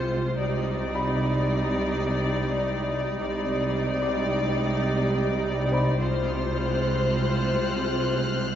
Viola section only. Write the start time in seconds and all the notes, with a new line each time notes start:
Already playing: G#3 F4
0.39 G3 D#4
3.20 G3 D#4
6.00 G#3 F4